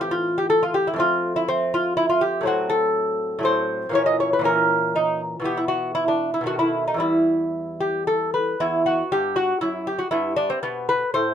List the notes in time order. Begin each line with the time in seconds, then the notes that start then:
Already playing: A2 E3 C4
0.01 G4
0.11 F4
0.38 G4
0.50 A4
0.63 F4
0.74 G4
0.87 E4
0.94 F2 A3
0.98 C4 F4
1.36 E4
1.48 C4
1.74 F4
1.97 E4
2.10 F4
2.21 G4
2.41 A2 F#3
2.45 C4 F#4
2.70 A4
3.39 A2 F#3
3.43 C4 C5
3.89 A#2 E3 C#4
3.95 C#5
4.06 D#5
4.20 C#5
4.33 B4
4.39 A#2 E3
4.44 C#4 A#4
4.96 D#4
5.40 B2 E3
5.44 B3 G4
5.57 E4
5.68 F#4
5.95 E4
6.08 D4
6.34 E4
6.41 B2 D#3
6.46 A3 F#4
6.59 E4
6.88 D#4
6.94 E2 E3 G3
7.00 E4
7.80 G4
8.07 A4
8.34 B4
8.60 E2 B3 E4
8.86 F#4
9.12 G2 G4
9.36 F#4
9.61 F#2 E4
9.87 G4
9.99 F#4
10.11 G2 B3 E4
10.36 D4
10.50 C4
10.63 B2 B3
10.89 B4
11.14 A2 C5